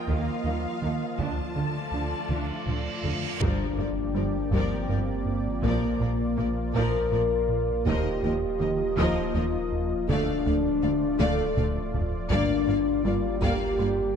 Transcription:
Already playing: F3 A#3 F4 D#5
0.08 D#2 D#3 A#3 F5, taiko
0.44 D#2 D#3 G3
0.82 D#2 D#3 F3 A#3
1.19 D2 D3 A3 D4 F4 D5 A5, taiko, reverse cymbal
1.56 D2 D3 A3
1.91 D2 D3 F3 D4
2.29 D2 D3 D4 F4, taiko mid
2.66 D2 D3 F3 A3, taiko low-mid
3.04 D2 D3 F3 A3, taiko low
3.40 G1 G2 F3 G3 A#3 D4 G4 A#4 D5, taiko, impact
3.78 G1 G2 F3 F4 A#4 D5
4.14 G1 G2 F3 G3 D4 A#4 D5
4.51 G1 G2 F3 G3 C4 A#4 D5, taiko
4.89 G1 G2 F3 F4 A#4 D5
5.25 G2
5.62 A#1 A#2 F3 A#3 F4 A#4 D5, taiko
6.00 A#1 A#2 F3 A#4 D5
6.37 A#1 A#2 F3 A#3 F4 A#4 D5
6.74 A#1 A#2 F3 A#3 A#4 D5, taiko
7.12 A#1 A#2 F3 A#4 D5
7.49 A#2
7.85 D#1 D#2 D#3 F3 A#3 G4 A#4 D#5, taiko
8.22 D#2 F3 D#4 A#4 D#5
8.59 D#2 D#3 F3 A#3 A#4 D#5
8.97 D#2 D#3 F3 F4 A#4 D#5, taiko
9.34 D#2 F3 D#4 A#4 D#5
9.72 D#2
10.09 D1 D2 D3 A3 D4 F4 D5 F5, taiko
10.46 D2 A3 D4 D5 F5
10.82 D2 D3 A3 D5 F5
11.20 D2 D3 A3 A4 D5 F5, taiko mid
11.57 D2 A3 D4 D5 F5, taiko low-mid
11.94 D2, taiko low
12.30 G1 G2 G3 A#3 D4 D5 F5, taiko
12.68 G1 G2 A#3 F4 D5 F5
13.05 G1 G2 G3 A#3 D4 F4 D5 F5
13.39 G1 G2 G3 A#3 G4 D5 F5, taiko
13.79 G1 G2 A#3 F4 D5 F5

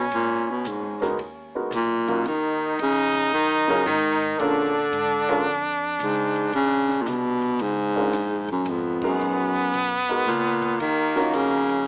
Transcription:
Already playing: C#4
0.11 G#1 A#2, ride
0.46 B2, muted upright bass stroke
0.64 A#1 G#2, hi-hat pedal, ride
0.82 G#1
1.00 F#1 G#3 B3 D#4 F#4 A#4, snare, ride
1.17 D#2, ride
1.55 G#3 B3 D#4 F#4 A#4
1.71 B1 A#2, hi-hat pedal, ride
2.08 F#3 C#4 D#4 F4 A#4, ride
2.24 D#2 D#3 D#4, ride
2.79 F2 C#3, hi-hat pedal, ride
3.15 kick, ride
3.32 F#2 D#3
3.68 C#3 F#3 C#4 D#4 F4 A#4, snare
3.86 G#2 D#3, hi-hat pedal, ride
4.22 ride
4.39 A#2 D3 G#3 C#4 D4 F4 A#4, ride
4.92 G#2, hi-hat pedal, ride
5.28 G#3 C#4 D4 F4 A#4, ride
5.46 F2
5.99 C#2 G#2, hi-hat pedal, ride
6.36 ride
6.52 A#1 C#3, ride
6.89 snare
7.02 C2 A#2
7.06 B2, snare, hi-hat pedal, ride
7.42 kick, ride
7.59 C#2 G#2, ride
7.96 G#3 C#4 D4 F4 A#4
8.12 A#1, hi-hat pedal, ride
8.48 F#2, kick, ride
8.65 G#1 B3, ride
8.70 F2
9.01 F#2 G#3 B3 D#4 F#4 A#4, kick, crash
9.19 A#1, hi-hat pedal
9.55 kick, ride
9.72 B1, ride
10.09 G#3 B3 D#4 F#4 A#4
10.25 C#2 A#2, hi-hat pedal, ride
10.62 kick, ride
10.79 D#2 D#3 A#3, ride
11.16 C#4 D#4 F4 F#4 A#4, snare
11.32 F2 C#3, hi-hat pedal, ride
11.69 ride

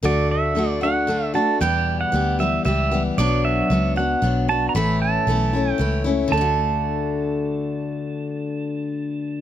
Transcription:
0.03 D2 D3 A3 D4 F#4 D5
0.31 E5
0.55 D3 A3 D4 F#4
0.81 A3 D4 F#4 F#5
1.07 D3 A3 D4 F#4
1.34 A3 D4 F#4 A5
1.61 E2 B2 E3 G3 B3 G4 G5
2.01 F#5
2.12 D2 E3 G3 B3 G4
2.39 E3 G3 B3 G4 E5
2.65 C#2 E3 G3 B3 G4 E5
2.91 E3 G3 B3 G4
3.18 B1 B2 F#3 B3 D4 F#4 D5
3.45 E5
3.70 C#2 F#3 B3 D4 F#4
3.96 B3 D4 F#4 F#5
4.22 B1 F#3 B3 D4 F#4
4.48 B3 D4 F#4 A5
4.69 A#5
4.75 A1 A2 E3 A3 C#4 E4 B5
5.02 A5
5.27 B1 E3 A3 C#4 E4
5.53 A3 C#4 E4
5.72 G5
5.78 C#2 E3 A3 C#4 E4
6.04 A3 C#4 E4
6.28 D3
6.32 D2 A3 A5
6.37 D4 F#4

